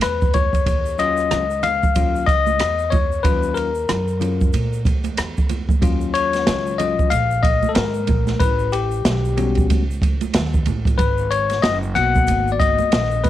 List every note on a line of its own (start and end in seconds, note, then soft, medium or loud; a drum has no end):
0.01 0.64 E2 loud
0.01 0.36 B4 medium
0.01 cross-stick loud
0.01 hi-hat pedal medium
0.01 ride medium
0.01 shaker medium
0.22 kick medium
0.22 shaker soft
0.34 1.01 C#5 medium
0.34 kick medium
0.34 ride medium
0.34 high conga medium
0.34 low conga medium
0.34 shaker soft
0.53 kick medium
0.53 ride soft
0.53 shaker soft
0.66 1.28 D#2 loud
0.66 kick loud
0.66 ride medium
0.66 shaker medium
0.86 shaker soft
0.98 1.44 F#3 medium
0.98 1.44 C#4 medium
0.98 1.45 F4 medium
0.98 1.65 D#5 loud
0.98 ride medium
0.98 shaker soft
1.17 cross-stick soft
1.17 shaker soft
1.31 1.93 C#2 medium
1.31 cross-stick loud
1.31 hi-hat pedal medium
1.31 ride medium
1.31 low conga medium
1.31 shaker medium
1.50 shaker soft
1.63 2.30 F5 medium
1.63 ride medium
1.63 low conga medium
1.63 shaker soft
1.83 kick medium
1.83 shaker soft
1.95 2.27 D#2 medium
1.95 2.25 F#3 soft
1.95 2.25 C#4 soft
1.95 2.25 F4 medium
1.95 kick medium
1.95 ride medium
1.95 shaker medium
2.15 shaker soft
2.26 2.58 C#2 medium
2.26 2.94 D#5 loud
2.26 kick loud
2.26 ride medium
2.26 shaker soft
2.46 high conga medium
2.46 shaker medium
2.59 3.21 E2 medium
2.59 cross-stick loud
2.59 hi-hat pedal medium
2.59 ride medium
2.59 shaker medium
2.78 shaker soft
2.90 3.24 C#5 medium
2.90 kick medium
2.90 ride medium
2.90 high conga medium
2.90 low conga medium
2.90 shaker soft
3.12 shaker soft
3.23 3.86 D#2 loud
3.23 3.69 F#3 soft
3.23 3.70 C#4 soft
3.23 3.70 F4 medium
3.23 3.57 B4 medium
3.23 kick loud
3.23 ride medium
3.23 shaker medium
3.43 shaker soft
3.54 4.81 A#4 medium
3.54 ride medium
3.54 shaker soft
3.75 shaker soft
3.89 4.51 F#2 medium
3.89 cross-stick loud
3.89 hi-hat pedal medium
3.89 ride medium
3.89 low conga medium
3.89 shaker medium
4.08 shaker soft
4.20 4.50 F#3 soft
4.20 4.50 C#4 soft
4.20 4.50 F4 soft
4.20 ride medium
4.20 low conga medium
4.20 shaker soft
4.41 kick medium
4.41 shaker soft
4.53 4.84 A#2 medium
4.53 ride medium
4.53 high conga soft
4.53 shaker medium
4.73 shaker soft
4.85 5.16 D#2 medium
4.85 kick medium
4.85 ride medium
4.85 high conga soft
4.85 shaker soft
5.04 ride soft
5.04 high conga medium
5.04 shaker soft
5.17 5.80 E2 medium
5.17 cross-stick loud
5.17 hi-hat pedal medium
5.17 ride medium
5.17 shaker medium
5.37 kick medium
5.37 shaker soft
5.49 ride medium
5.49 high conga medium
5.49 low conga medium
5.49 shaker soft
5.69 kick medium
5.69 high conga medium
5.69 shaker soft
5.82 6.44 D#2 medium
5.82 6.75 F#3 medium
5.82 6.75 C#4 soft
5.82 6.76 F4 medium
5.82 kick loud
5.82 ride medium
5.82 shaker medium
6.01 shaker soft
6.14 6.81 C#5 medium
6.14 ride medium
6.14 shaker soft
6.33 snare soft
6.33 ride soft
6.33 shaker soft
6.47 6.96 C#2 loud
6.47 snare loud
6.47 hi-hat pedal soft
6.47 ride medium
6.47 shaker medium
6.67 shaker soft
6.78 7.08 F#3 soft
6.78 7.09 C#4 soft
6.78 7.09 F4 soft
6.78 7.12 D#5 medium
6.78 ride medium
6.78 low conga medium
6.78 shaker soft
6.99 muted upright bass stroke soft
6.99 kick medium
6.99 shaker soft
7.10 7.61 A#1 medium
7.10 7.44 F5 loud
7.10 ride medium
7.10 high conga soft
7.10 shaker medium
7.31 shaker soft
7.42 7.71 D#5 medium
7.42 kick loud
7.42 ride medium
7.42 high conga soft
7.42 shaker soft
7.63 muted upright bass stroke soft
7.63 high conga medium
7.63 shaker soft
7.69 7.75 A4 medium
7.75 8.07 G#2 medium
7.75 8.42 A#4 medium
7.75 snare loud
7.75 hi-hat pedal medium
7.75 ride medium
7.75 shaker medium
7.94 shaker soft
8.07 8.39 A#1 loud
8.07 kick medium
8.07 ride medium
8.07 high conga medium
8.07 low conga medium
8.07 shaker soft
8.27 snare soft
8.27 ride soft
8.27 high conga medium
8.27 shaker soft
8.40 9.02 A1 loud
8.40 8.73 B4 medium
8.40 kick loud
8.40 ride medium
8.40 shaker medium
8.59 shaker soft
8.72 9.65 G4 medium
8.72 ride medium
8.72 shaker soft
8.91 shaker soft
9.05 9.66 B1 loud
9.05 snare loud
9.05 hi-hat pedal medium
9.05 ride medium
9.05 shaker medium
9.25 shaker soft
9.36 9.82 G3 soft
9.36 9.83 B3 soft
9.36 9.83 C#4 soft
9.36 9.83 F#4 medium
9.36 ride medium
9.36 low conga medium
9.36 shaker soft
9.55 kick medium
9.55 ride soft
9.55 shaker soft
9.70 10.19 C#2 medium
9.70 kick medium
9.70 ride medium
9.70 high conga soft
9.70 shaker medium
9.91 shaker soft
10.02 kick loud
10.02 ride medium
10.02 high conga soft
10.02 shaker soft
10.21 muted upright bass stroke soft
10.21 ride soft
10.21 high conga medium
10.21 shaker soft
10.34 10.65 D#2 loud
10.34 snare loud
10.34 hi-hat pedal medium
10.34 ride medium
10.34 shaker medium
10.53 kick medium
10.53 shaker soft
10.66 10.97 A1 medium
10.66 ride medium
10.66 high conga medium
10.66 low conga medium
10.66 shaker soft
10.85 kick medium
10.85 ride soft
10.85 high conga medium
10.85 shaker soft
10.98 11.60 G#1 loud
10.98 11.31 B4 medium
10.98 kick loud
10.98 ride medium
10.98 shaker medium
11.18 shaker soft
11.31 11.64 C#5 loud
11.31 ride medium
11.31 shaker soft
11.50 snare soft
11.50 ride soft
11.50 shaker soft
11.62 11.94 F#1 medium
11.62 11.77 D#5 loud
11.62 snare loud
11.62 hi-hat pedal medium
11.62 ride medium
11.62 shaker medium
11.83 shaker soft
11.95 12.29 B1 medium
11.95 12.88 A#3 soft
11.95 12.88 B3 soft
11.95 12.89 F#4 medium
11.95 12.50 F#5 loud
11.95 ride medium
11.95 low conga medium
11.95 shaker soft
12.15 kick medium
12.15 shaker soft
12.27 12.77 G#1 medium
12.27 ride medium
12.27 high conga soft
12.27 shaker medium
12.48 shaker soft
12.52 12.59 D5 medium
12.60 13.26 D#5 medium
12.60 kick medium
12.60 ride medium
12.60 high conga soft
12.60 shaker soft
12.79 muted upright bass stroke soft
12.79 high conga medium
12.79 shaker soft
12.92 13.23 A#1 medium
12.92 snare loud
12.92 hi-hat pedal medium
12.92 ride medium
12.92 shaker medium
13.11 shaker soft
13.24 13.30 D#2 medium
13.24 13.30 B4 medium
13.24 kick medium
13.24 ride medium
13.24 high conga medium
13.24 low conga medium
13.24 shaker soft